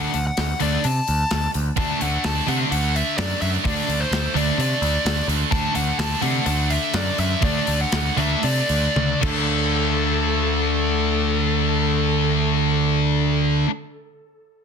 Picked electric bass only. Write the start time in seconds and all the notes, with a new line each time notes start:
0.14 D2
0.38 D2
0.61 D2
0.85 C3
1.09 D2
1.32 D2
1.55 D2
1.77 D2
2.02 D2
2.25 D2
2.48 C3
2.72 D2
3.18 F#2
3.42 F#2
3.65 D2
3.88 D2
4.11 D2
4.35 D2
4.58 C3
4.82 D2
5.05 D2
5.28 D2
5.52 D2
5.76 D2
5.99 D2
6.22 C3
6.46 D2
6.94 F#2
7.18 F#2
7.42 D2
7.68 D2
7.92 D2
8.17 D2
8.44 C3
8.70 D2
8.96 D2
9.23 D2